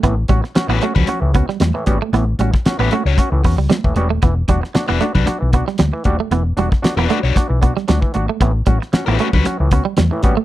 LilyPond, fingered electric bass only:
\new Staff \with { instrumentName = "Fingered electric bass" } { \clef bass \time 4/4 \key a \mixolydian \tempo 4 = 115 a,,8 a,,16 r8 a,,16 r16 cis,16 r16 cis,8 r16 e,16 r16 gis,,16 r16 | a,,8 a,,16 r8 a,,16 r16 cis,16 r16 cis,16 e,16 cis,16 r16 dis,,16 e,,16 dis,,16 | e,,8 e,,16 r8 e,,16 r16 b,,16 r16 b,,8 r16 d,16 r16 dis,,16 r16 | e,,8 e,,16 r8 e,,16 r16 b,,16 r16 b,,8 r16 d,16 r16 gis,,16 r16 |
a,,8 a,,16 r8 a,,16 r16 cis,16 r16 cis,8 r16 e,16 r16 gis,,16 r16 | }